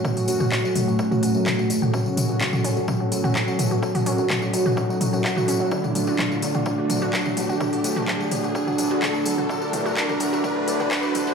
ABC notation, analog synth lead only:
X:1
M:4/4
L:1/8
Q:1/4=127
K:F#m
V:1 name="Analog synth lead"
A,8 | C4 z3 F- | F8 | D4 D4 |
D4 D4 | D2 D2 D2 D2 |]